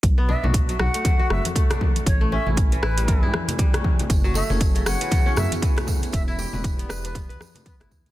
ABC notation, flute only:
X:1
M:4/4
L:1/16
Q:"Swing 16ths" 1/4=118
K:Bm
V:1 name="Flute"
z2 e z3 f4 e z4 z | c z e z3 B4 z6 | z2 e z3 f4 e z4 z | e e z4 z B z4 B B z2 |]